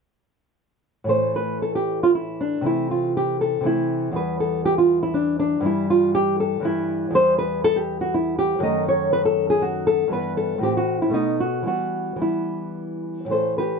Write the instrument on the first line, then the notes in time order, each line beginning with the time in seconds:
nylon-string guitar
1.04 A2 E3
1.08 A3 C5
1.36 B4
1.62 A4
1.75 G4
2.03 F4
2.15 E4
2.41 D4
2.61 C3 E3 A3
2.66 E4
2.91 F4
3.17 G4
3.41 A4
3.61 C3 E3 A3
3.66 E4
4.12 E2 E3 G3
4.16 B4
4.40 A4
4.65 G4
4.78 F4
5.03 E4
5.14 D4
5.39 D4
5.60 G2 E3
5.65 G3 E4
5.90 F4
6.15 G4
6.40 A4
6.60 G2 E3 G3
6.65 E4
7.11 E2 E3 G3
7.15 C5
7.38 B4
7.64 A4
7.76 G4
8.01 F#4
8.14 E4
8.39 G4
8.59 F#2 D#3 A3
8.63 D#5
8.88 C#5
9.13 B4
9.25 A4
9.50 G#4
9.62 F#4
9.87 A4
10.08 G2 E3 B3
10.13 B4
10.37 A4
10.58 A2 E3 C4
10.63 G4
10.77 F#4
11.02 E4
11.09 B2 A3 B3
11.14 D#4
11.40 F#4
11.62 E3 G3 B3
11.67 F#4
12.16 E3 G3
12.20 B3 E4
13.25 A2 E3
13.30 A3 A4 C5
13.58 G4 B4